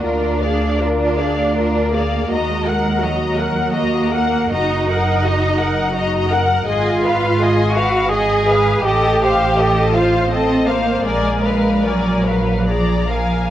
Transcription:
<<
  \new Staff \with { instrumentName = "Violin section" } { \time 3/4 \key ees \minor \tempo 4 = 81 d''8 f''8 d''8 f''8 d''8 f''8 | bes''8 ges''8 bes''8 ges''8 bes''8 ges''8 | bes''8 ges''8 bes''8 ges''8 bes''8 ges''8 | aes''8 f''8 aes''8 f''8 aes''8 f''8 |
a''8 f''8 a''8 f''8 a''8 f''8 | aes''8 f''8 aes''8 f''8 bes''8 aes''8 | }
  \new Staff \with { instrumentName = "Violin section" } { \time 3/4 \key ees \minor bes'8 d''8 bes'8 d''8 bes'8 d''8 | ees''8 ges''8 ees''8 ges''8 ees''8 ges''8 | ees''8 ges''8 ees''8 ges''8 ees''8 ges''8 | ees''8 f''8 ees''8 f''8 ees''8 f''8 |
ees''8 f''8 ees''8 f''8 ees''8 f''8 | d''8 bes'8 d''8 bes'8 d''8 f''8 | }
  \new Staff \with { instrumentName = "Viola section" } { \time 3/4 \key ees \minor f'8 aes'8 f'8 aes'8 f'8 aes'8 | ges'8 bes'8 ges'8 bes'8 ges'8 bes'8 | ges'8 bes'8 ges'8 bes'8 ges'8 bes'8 | aes'8 ces''8 aes'8 ces''8 aes'8 ces''8 |
a'8 c''8 a'8 c''8 a'8 c''8 | bes'8 ces''8 bes'8 ces''8 aes'8 bes'8 | }
  \new Staff \with { instrumentName = "Cello section" } { \time 3/4 \key ees \minor d'2~ d'8 bes8 | aes4 ges4 bes4 | ees'2~ ees'8 r8 | f'4. ges'8 aes'4 |
g'4. f'8 c'8 bes8 | aes4 ges4 f4 | }
  \new Staff \with { instrumentName = "Double bass section" } { \clef bass \time 3/4 \key ees \minor d,2. | ees,2. | ges,,2. | aes,,2. |
a,,2. | bes,,2. | }
>>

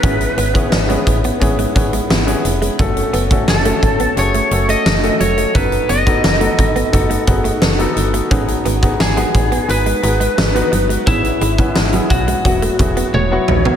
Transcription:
<<
  \new Staff \with { instrumentName = "Lead electric guitar" } { \time 4/4 \key fis \dorian \tempo 4 = 87 b'2~ b'8 r4. | r4 a'4 cis''8. dis''8. cis''8 | b'8 dis''2 r4. | r4 gis'4 b'2 |
e'4. fis'4. cis''4 | }
  \new Staff \with { instrumentName = "Grand piano" } { \time 4/4 \key fis \dorian <b cis' e' gis'>8. <b cis' e' gis'>8 <b cis' e' gis'>8. <b cis' e' gis'>8 <b cis' e' gis'>8. <b cis' e' gis'>8. | <a cis' fis' a'>8. <a cis' fis' a'>8 <a cis' fis' a'>8. <a cis' fis' gis'>8 <a cis' fis' a'>8. <a cis' fis' a'>8. | <b dis' fis' a'>8. <b dis' fis' a'>8 <b dis' fis' a'>8. <b dis' fis' a'>8 <b dis' fis' gis'>8. <b dis' fis' a'>8. | <b dis' fis' gis'>8. <b dis' fis' gis'>8 <b dis' fis' gis'>8. <b dis' fis' b'>8 <b dis' fis' gis'>8. <b dis' fis' b'>8. |
<b cis' e' gis'>8. <b cis' e' b'>8 <b cis' e' gis'>8. <fis b e' fis'>8 <fis b e' gis'>8. <fis b e' fis'>8. | }
  \new Staff \with { instrumentName = "Clean electric guitar" } { \time 4/4 \key fis \dorian cis'16 r16 b16 r8 gis16 r16 b16 r16 gis16 r16 gis16 b16 r8 gis16 | cis'16 r16 b16 r8 a16 r16 b16 r16 a16 r16 a16 r8 fis16 a16 | cis'16 r16 b16 r8 a16 r16 b16 r16 a16 r16 a16 b16 r8 a16 | cis'16 r16 b16 r8 gis16 r16 b16 r16 gis16 r16 gis16 r8 fis16 gis16 |
b16 r16 gis16 r8 fis16 r16 gis16 r16 a16 r16 b16 a16 r8 b16 | }
  \new Staff \with { instrumentName = "FM bass" } { \clef bass \time 4/4 \key fis \dorian gis,,8 gis,,8 gis,,8 a,,8 gis,,8 gis,,8 gis,,8 eis,,8 | fis,,8 fis,,8 fis,,8 gis,,8 fis,,8 fis,,8 fis,,8 eis,,8 | fis,,8 fis,,8 fis,,8 gis,,8 fis,,8 fis,,8 fis,,8 g,,8 | gis,,8 gis,,8 gis,,8 a,,8 gis,,8 gis,,8 gis,,8 g,,8 |
gis,,8 gis,,8 gis,,8 b,,8 e,,8 e,,8 e,,8 ais,,8 | }
  \new DrumStaff \with { instrumentName = "Drums" } \drummode { \time 4/4 <hh bd>16 hh16 hh16 <hh bd>16 sn16 hh16 <hh bd>16 hh16 <hh bd>16 hh16 <hh bd>16 hh16 sn16 hh16 hh16 hh16 | <hh bd>16 hh16 hh16 <hh bd>16 sn16 hh16 <hh bd>16 hh16 hh16 hh16 hh16 hh16 sn16 hh16 hh16 hh16 | <hh bd>16 hh16 hh16 <hh bd>16 sn16 hh16 <hh bd>16 hh16 <hh bd>16 hh16 <hh bd>16 hh16 sn16 hh16 hh16 hh16 | <hh bd>16 hh16 hh16 <hh bd>16 sn16 hh16 <hh bd>16 hh16 hh16 hh16 hh16 hh16 sn16 hh16 hh16 hh16 |
<hh bd>16 hh16 hh16 <hh bd>16 sn16 hh16 <hh bd>16 hh16 <hh bd>16 hh16 <hh bd>16 hh16 tommh8 toml16 tomfh16 | }
>>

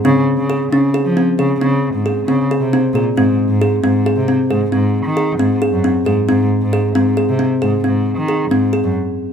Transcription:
<<
  \new Staff \with { instrumentName = "Kalimba" } { \time 7/4 \key aes \mixolydian \tempo 4 = 135 c'4 aes'8 des'8 aes'8 c'8 aes'8 c'4 aes'8 c'8 aes'8 c'8 aes'8 | c'4 aes'8 c'8 aes'8 c'8 aes'8 c'4 aes'8 c'8 aes'8 c'8 aes'8 | c'4 aes'8 c'8 aes'8 c'8 aes'8 c'4 aes'8 c'8 aes'8 r4 | }
  \new Staff \with { instrumentName = "Cello" } { \clef bass \time 7/4 \key aes \mixolydian des8 r16 des8. des8 r16 f8 r16 des8 des8. aes,8. des8 r16 c8 r16 bes,16 r16 | aes,8 r16 aes,8. aes,8 r16 c8 r16 aes,8 aes,8. ees8. aes,8 r16 ges,8 r16 aes,16 r16 | aes,8 r16 aes,8. aes,8 r16 c8 r16 aes,8 aes,8. ees8. aes,8 r16 ges,16 r4 | }
>>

